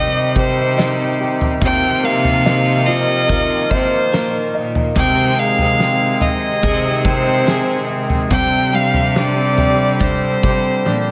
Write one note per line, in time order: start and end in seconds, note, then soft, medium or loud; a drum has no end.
0.00 1.57 C3 medium
0.00 1.58 C3 loud
0.00 0.76 D#3 medium
0.00 8.28 D#3 medium
0.00 0.32 G3 medium
0.00 1.59 G3 medium
0.00 0.77 C4 medium
0.00 1.58 C4 medium
0.00 0.78 D#4 medium
0.00 0.79 D#4 medium
0.00 0.35 G4 soft
0.00 0.79 G4 medium
0.00 1.59 G4 medium
0.00 0.37 D#5 loud
0.36 1.19 G4 medium
0.36 1.17 C5 loud
0.36 kick loud
0.77 1.61 D#3 medium
0.77 1.62 C4 medium
0.77 1.59 D#4 medium
0.77 1.62 D#4 medium
0.77 1.63 G4 medium
0.77 snare loud
1.21 1.61 G4 soft
1.41 floor tom medium
1.61 2.87 C3 medium
1.61 3.67 C3 loud
1.61 4.93 C3 medium
1.61 2.90 D#3 medium
1.61 4.79 F3 medium
1.61 4.79 A#3 medium
1.61 2.88 A#3 medium
1.61 2.88 D#4 medium
1.61 4.79 F4 medium
1.61 2.86 F4 medium
1.61 kick loud
1.61 floor tom loud
1.65 2.06 G5 loud
2.03 3.67 A#3 medium
2.03 2.88 F5 loud
2.25 floor tom medium
2.46 3.70 D#4 medium
2.46 snare medium
2.86 3.30 D#4 soft
2.86 3.29 F4 soft
2.86 4.51 F4 medium
2.86 3.72 D#5 loud
2.90 3.28 A#3 soft
3.28 4.12 D#3 medium
3.28 4.12 A#3 medium
3.28 4.14 D#4 medium
3.28 4.14 F4 medium
3.28 4.12 A#4 medium
3.28 kick medium
3.28 floor tom medium
3.71 4.10 C3 loud
3.71 4.53 D#4 medium
3.71 4.55 C5 loud
3.71 kick medium
4.12 4.51 A#2 medium
4.12 4.96 D#3 medium
4.12 4.97 A#3 medium
4.12 4.99 D#4 medium
4.12 4.98 F4 medium
4.12 4.94 A#4 medium
4.12 snare loud
4.54 4.93 A#2 medium
4.54 4.95 D#4 medium
4.75 floor tom medium
4.95 6.63 C3 medium
4.95 5.55 C3 loud
4.95 8.27 C3 medium
4.95 6.61 D#3 medium
4.95 8.28 G#3 medium
4.95 6.62 G#3 medium
4.95 11.11 C4 medium
4.95 8.28 G#4 medium
4.95 5.41 G5 loud
4.95 kick loud
4.95 floor tom loud
4.99 6.64 C4 medium
4.99 6.64 G#4 medium
5.38 7.02 G#3 medium
5.38 6.23 F5 loud
5.59 6.59 C3 medium
5.59 floor tom medium
5.80 7.04 C4 medium
5.80 snare medium
6.21 7.85 D#4 medium
6.21 7.06 D#5 loud
6.21 floor tom medium
6.62 8.27 C3 loud
6.62 7.45 D#3 medium
6.62 7.46 G#3 medium
6.62 7.48 C4 medium
6.62 7.46 G#4 medium
6.62 7.48 G#4 medium
6.62 kick medium
6.62 floor tom medium
7.05 7.89 C4 medium
7.05 7.86 C5 medium
7.05 kick medium
7.46 8.31 D#3 medium
7.46 8.31 G#3 medium
7.46 8.33 C4 medium
7.46 8.29 G#4 medium
7.46 8.32 G#4 medium
7.46 snare loud
7.90 8.31 C4 soft
8.10 floor tom medium
8.30 10.00 C3 medium
8.30 10.39 C3 loud
8.30 11.11 C3 medium
8.30 11.11 D3 medium
8.30 9.99 G3 medium
8.30 11.11 G3 medium
8.30 10.00 C4 medium
8.30 10.01 D4 medium
8.30 11.11 G4 medium
8.30 8.77 G5 loud
8.30 kick loud
8.30 floor tom loud
8.35 10.03 G4 medium
8.73 10.39 G3 medium
8.73 9.19 F5 loud
8.94 floor tom medium
9.16 9.99 D4 medium
9.16 10.05 D5 loud
9.16 snare medium
9.58 10.42 G4 medium
9.58 floor tom medium
10.00 10.85 G3 medium
10.00 10.86 C4 medium
10.00 10.86 D4 medium
10.00 10.87 D4 medium
10.00 10.88 G4 medium
10.00 11.11 C5 medium
10.00 kick medium
10.00 floor tom medium
10.43 10.83 C3 medium
10.43 11.11 G4 medium
10.43 kick medium
10.85 11.11 A#2 medium
10.85 11.11 G3 medium
10.85 11.11 C4 medium
10.85 11.11 D4 medium
10.85 11.11 G4 medium
10.85 high tom medium